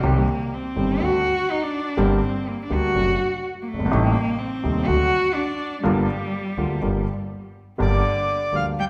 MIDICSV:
0, 0, Header, 1, 5, 480
1, 0, Start_track
1, 0, Key_signature, -2, "minor"
1, 0, Tempo, 485437
1, 33, Time_signature, 4, 2, 24, 8
1, 8797, End_track
2, 0, Start_track
2, 0, Title_t, "Bandoneon"
2, 0, Program_c, 0, 23
2, 7727, Note_on_c, 0, 74, 70
2, 8460, Note_on_c, 0, 77, 76
2, 8462, Note_off_c, 0, 74, 0
2, 8562, Note_off_c, 0, 77, 0
2, 8702, Note_on_c, 0, 79, 91
2, 8750, Note_off_c, 0, 79, 0
2, 8797, End_track
3, 0, Start_track
3, 0, Title_t, "Cello"
3, 0, Program_c, 1, 42
3, 0, Note_on_c, 1, 55, 83
3, 175, Note_on_c, 1, 58, 80
3, 190, Note_off_c, 1, 55, 0
3, 539, Note_on_c, 1, 60, 84
3, 554, Note_off_c, 1, 58, 0
3, 1017, Note_on_c, 1, 66, 94
3, 1031, Note_off_c, 1, 60, 0
3, 1491, Note_on_c, 1, 63, 81
3, 1506, Note_off_c, 1, 66, 0
3, 1611, Note_on_c, 1, 62, 86
3, 1626, Note_off_c, 1, 63, 0
3, 1979, Note_on_c, 1, 60, 83
3, 1994, Note_off_c, 1, 62, 0
3, 2460, Note_on_c, 1, 58, 79
3, 2475, Note_off_c, 1, 60, 0
3, 2596, Note_on_c, 1, 62, 80
3, 2611, Note_off_c, 1, 58, 0
3, 2703, Note_on_c, 1, 66, 92
3, 2718, Note_off_c, 1, 62, 0
3, 3404, Note_off_c, 1, 66, 0
3, 3580, Note_on_c, 1, 58, 62
3, 3638, Note_on_c, 1, 57, 86
3, 3653, Note_off_c, 1, 58, 0
3, 3996, Note_on_c, 1, 58, 89
3, 4011, Note_off_c, 1, 57, 0
3, 4342, Note_on_c, 1, 60, 88
3, 4357, Note_off_c, 1, 58, 0
3, 4807, Note_on_c, 1, 66, 104
3, 4822, Note_off_c, 1, 60, 0
3, 5283, Note_on_c, 1, 62, 88
3, 5298, Note_off_c, 1, 66, 0
3, 5760, Note_off_c, 1, 62, 0
3, 5766, Note_on_c, 1, 55, 86
3, 7420, Note_off_c, 1, 55, 0
3, 7714, Note_on_c, 1, 50, 64
3, 8394, Note_off_c, 1, 50, 0
3, 8443, Note_on_c, 1, 53, 64
3, 8549, Note_off_c, 1, 53, 0
3, 8691, Note_on_c, 1, 55, 77
3, 8741, Note_off_c, 1, 55, 0
3, 8797, End_track
4, 0, Start_track
4, 0, Title_t, "Grand piano"
4, 0, Program_c, 2, 0
4, 31, Note_on_c, 2, 48, 67
4, 31, Note_on_c, 2, 55, 58
4, 32, Note_on_c, 2, 51, 61
4, 33, Note_on_c, 2, 67, 71
4, 36, Note_on_c, 2, 36, 74
4, 36, Note_on_c, 2, 60, 58
4, 234, Note_off_c, 2, 48, 0
4, 234, Note_off_c, 2, 55, 0
4, 235, Note_off_c, 2, 51, 0
4, 235, Note_off_c, 2, 67, 0
4, 236, Note_off_c, 2, 36, 0
4, 237, Note_off_c, 2, 60, 0
4, 751, Note_on_c, 2, 51, 40
4, 753, Note_on_c, 2, 55, 39
4, 754, Note_on_c, 2, 43, 46
4, 755, Note_on_c, 2, 60, 38
4, 756, Note_on_c, 2, 31, 50
4, 757, Note_on_c, 2, 67, 45
4, 954, Note_off_c, 2, 51, 0
4, 956, Note_off_c, 2, 43, 0
4, 956, Note_off_c, 2, 55, 0
4, 957, Note_off_c, 2, 31, 0
4, 957, Note_off_c, 2, 60, 0
4, 957, Note_off_c, 2, 67, 0
4, 990, Note_on_c, 2, 50, 52
4, 995, Note_on_c, 2, 57, 39
4, 996, Note_on_c, 2, 60, 40
4, 998, Note_on_c, 2, 38, 51
4, 1000, Note_on_c, 2, 66, 44
4, 1196, Note_off_c, 2, 50, 0
4, 1197, Note_off_c, 2, 57, 0
4, 1197, Note_off_c, 2, 60, 0
4, 1198, Note_off_c, 2, 38, 0
4, 1200, Note_off_c, 2, 66, 0
4, 1948, Note_on_c, 2, 50, 61
4, 1950, Note_on_c, 2, 31, 72
4, 1951, Note_on_c, 2, 55, 59
4, 1952, Note_on_c, 2, 43, 81
4, 1953, Note_on_c, 2, 67, 69
4, 1954, Note_on_c, 2, 58, 57
4, 2152, Note_off_c, 2, 50, 0
4, 2153, Note_off_c, 2, 31, 0
4, 2154, Note_off_c, 2, 43, 0
4, 2154, Note_off_c, 2, 55, 0
4, 2155, Note_off_c, 2, 58, 0
4, 2155, Note_off_c, 2, 67, 0
4, 2669, Note_on_c, 2, 50, 47
4, 2670, Note_on_c, 2, 38, 50
4, 2673, Note_on_c, 2, 55, 39
4, 2674, Note_on_c, 2, 58, 42
4, 2675, Note_on_c, 2, 67, 50
4, 2871, Note_off_c, 2, 38, 0
4, 2872, Note_off_c, 2, 50, 0
4, 2873, Note_off_c, 2, 55, 0
4, 2874, Note_off_c, 2, 58, 0
4, 2874, Note_off_c, 2, 67, 0
4, 2913, Note_on_c, 2, 48, 45
4, 2915, Note_on_c, 2, 54, 50
4, 2917, Note_on_c, 2, 42, 50
4, 2922, Note_on_c, 2, 57, 41
4, 2923, Note_on_c, 2, 62, 53
4, 3112, Note_off_c, 2, 48, 0
4, 3114, Note_off_c, 2, 42, 0
4, 3116, Note_off_c, 2, 54, 0
4, 3116, Note_off_c, 2, 57, 0
4, 3117, Note_off_c, 2, 62, 0
4, 3693, Note_on_c, 2, 30, 45
4, 3748, Note_on_c, 2, 31, 61
4, 3750, Note_off_c, 2, 30, 0
4, 3807, Note_off_c, 2, 31, 0
4, 3810, Note_on_c, 2, 32, 73
4, 3865, Note_on_c, 2, 48, 70
4, 3868, Note_off_c, 2, 32, 0
4, 3869, Note_on_c, 2, 63, 78
4, 3871, Note_on_c, 2, 33, 81
4, 3871, Note_on_c, 2, 45, 80
4, 3872, Note_on_c, 2, 55, 62
4, 3873, Note_on_c, 2, 57, 67
4, 4066, Note_off_c, 2, 48, 0
4, 4068, Note_off_c, 2, 63, 0
4, 4069, Note_off_c, 2, 33, 0
4, 4069, Note_off_c, 2, 45, 0
4, 4069, Note_off_c, 2, 55, 0
4, 4070, Note_off_c, 2, 57, 0
4, 4582, Note_on_c, 2, 48, 46
4, 4583, Note_on_c, 2, 55, 42
4, 4585, Note_on_c, 2, 27, 54
4, 4585, Note_on_c, 2, 39, 52
4, 4590, Note_on_c, 2, 57, 39
4, 4590, Note_on_c, 2, 63, 46
4, 4783, Note_off_c, 2, 48, 0
4, 4784, Note_off_c, 2, 55, 0
4, 4785, Note_off_c, 2, 27, 0
4, 4785, Note_off_c, 2, 39, 0
4, 4787, Note_off_c, 2, 57, 0
4, 4787, Note_off_c, 2, 63, 0
4, 4815, Note_on_c, 2, 50, 53
4, 4817, Note_on_c, 2, 57, 44
4, 4820, Note_on_c, 2, 38, 58
4, 4820, Note_on_c, 2, 54, 44
4, 4825, Note_on_c, 2, 66, 51
4, 5020, Note_off_c, 2, 57, 0
4, 5021, Note_off_c, 2, 50, 0
4, 5022, Note_off_c, 2, 38, 0
4, 5022, Note_off_c, 2, 54, 0
4, 5024, Note_off_c, 2, 66, 0
4, 5766, Note_on_c, 2, 50, 63
4, 5769, Note_on_c, 2, 55, 57
4, 5770, Note_on_c, 2, 58, 59
4, 5771, Note_on_c, 2, 31, 81
4, 5771, Note_on_c, 2, 43, 75
4, 5778, Note_on_c, 2, 65, 75
4, 5975, Note_off_c, 2, 50, 0
4, 5977, Note_off_c, 2, 55, 0
4, 5977, Note_off_c, 2, 58, 0
4, 5978, Note_off_c, 2, 31, 0
4, 5978, Note_off_c, 2, 43, 0
4, 5981, Note_off_c, 2, 65, 0
4, 6501, Note_on_c, 2, 50, 47
4, 6502, Note_on_c, 2, 55, 42
4, 6504, Note_on_c, 2, 58, 37
4, 6505, Note_on_c, 2, 65, 48
4, 6506, Note_on_c, 2, 38, 50
4, 6704, Note_off_c, 2, 50, 0
4, 6704, Note_off_c, 2, 55, 0
4, 6705, Note_off_c, 2, 58, 0
4, 6706, Note_off_c, 2, 38, 0
4, 6706, Note_off_c, 2, 65, 0
4, 6740, Note_on_c, 2, 31, 52
4, 6741, Note_on_c, 2, 50, 45
4, 6742, Note_on_c, 2, 55, 39
4, 6743, Note_on_c, 2, 58, 41
4, 6744, Note_on_c, 2, 43, 50
4, 6746, Note_on_c, 2, 65, 47
4, 6944, Note_off_c, 2, 31, 0
4, 6944, Note_off_c, 2, 50, 0
4, 6945, Note_off_c, 2, 55, 0
4, 6946, Note_off_c, 2, 43, 0
4, 6946, Note_off_c, 2, 58, 0
4, 6947, Note_off_c, 2, 65, 0
4, 7693, Note_on_c, 2, 50, 58
4, 7697, Note_on_c, 2, 58, 53
4, 7698, Note_on_c, 2, 67, 64
4, 7699, Note_on_c, 2, 55, 54
4, 7701, Note_on_c, 2, 31, 73
4, 7702, Note_on_c, 2, 43, 72
4, 7903, Note_off_c, 2, 50, 0
4, 7905, Note_off_c, 2, 58, 0
4, 7906, Note_off_c, 2, 55, 0
4, 7906, Note_off_c, 2, 67, 0
4, 7908, Note_off_c, 2, 31, 0
4, 7908, Note_off_c, 2, 43, 0
4, 8430, Note_on_c, 2, 50, 43
4, 8431, Note_on_c, 2, 55, 35
4, 8432, Note_on_c, 2, 38, 43
4, 8435, Note_on_c, 2, 67, 42
4, 8436, Note_on_c, 2, 58, 36
4, 8634, Note_off_c, 2, 38, 0
4, 8634, Note_off_c, 2, 50, 0
4, 8634, Note_off_c, 2, 55, 0
4, 8636, Note_off_c, 2, 58, 0
4, 8636, Note_off_c, 2, 67, 0
4, 8797, End_track
5, 0, Start_track
5, 0, Title_t, "Upright bass"
5, 0, Program_c, 3, 32
5, 30, Note_on_c, 3, 36, 88
5, 234, Note_off_c, 3, 36, 0
5, 758, Note_on_c, 3, 31, 62
5, 958, Note_off_c, 3, 31, 0
5, 991, Note_on_c, 3, 38, 56
5, 1195, Note_off_c, 3, 38, 0
5, 1958, Note_on_c, 3, 31, 94
5, 2157, Note_off_c, 3, 31, 0
5, 2676, Note_on_c, 3, 38, 56
5, 2875, Note_off_c, 3, 38, 0
5, 2915, Note_on_c, 3, 30, 57
5, 3113, Note_off_c, 3, 30, 0
5, 3692, Note_on_c, 3, 30, 46
5, 3749, Note_off_c, 3, 30, 0
5, 3755, Note_on_c, 3, 31, 59
5, 3811, Note_off_c, 3, 31, 0
5, 3816, Note_on_c, 3, 32, 71
5, 3871, Note_off_c, 3, 32, 0
5, 3884, Note_on_c, 3, 33, 95
5, 4076, Note_off_c, 3, 33, 0
5, 4595, Note_on_c, 3, 39, 62
5, 4789, Note_off_c, 3, 39, 0
5, 4834, Note_on_c, 3, 38, 58
5, 5029, Note_off_c, 3, 38, 0
5, 5789, Note_on_c, 3, 31, 87
5, 5987, Note_off_c, 3, 31, 0
5, 6497, Note_on_c, 3, 38, 60
5, 6702, Note_off_c, 3, 38, 0
5, 6747, Note_on_c, 3, 31, 52
5, 6947, Note_off_c, 3, 31, 0
5, 7715, Note_on_c, 3, 31, 83
5, 7914, Note_off_c, 3, 31, 0
5, 8429, Note_on_c, 3, 38, 54
5, 8633, Note_off_c, 3, 38, 0
5, 8797, End_track
0, 0, End_of_file